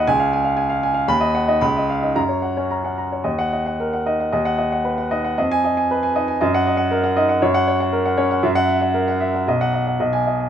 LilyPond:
<<
  \new Staff \with { instrumentName = "Grand piano" } { \time 2/4 \key fis \major \tempo 4 = 116 << { gis''8 r4. | b''8 r8 b''8 r8 | ais''8 r4. | \key ees \minor r16 ges''8 r4 r16 |
r16 fis''8 r4 r16 | r16 aes''8 r4 r16 | r16 ges''8 r4 r16 | \key fis \major r16 fis''8 r4 r16 |
r16 fis''8 r4 r16 | r16 fis''8 r8 gis''8 r16 | } \\ { r16 eis''16 gis''16 eis''16 gis''16 eis''16 gis''16 eis''16 | r16 dis''16 fis''16 dis''16 r16 dis''16 eis''16 dis''16 | r16 cis''16 fis''16 cis''16 ais''16 fis''16 ais''16 cis''16 | ees''8 ees''16 ges''16 bes'16 ges''16 ees''16 ges''16 |
dis''8 dis''16 fis''16 b'16 fis''16 dis''16 fis''16 | ees''8 ees''16 aes''16 ces''16 aes''16 ees''16 aes''16 | ees''8 ees''16 ges''16 bes'16 ges''16 ees''16 ges''16 | cis''8 cis''16 fis''16 ais'16 fis''16 cis''16 fis''16 |
e''8 e''16 fis''16 ais'16 fis''16 e''16 fis''16 | dis''8 dis''16 fis''16 dis''8 dis''16 gis''16 | } >> }
  \new Staff \with { instrumentName = "Grand piano" } { \clef bass \time 2/4 \key fis \major cis,2 | dis,8. dis'16 cis,8. dis'16 | fis,8. cis'8 cis'8 r16 | \key ees \minor ees,4. ees'8 |
dis,4. dis'8 | f,4. ees'8 | ges,4. ees'8 | \key fis \major fis,4. cis'8 |
fis,2 | b,,4 b,,4 | }
>>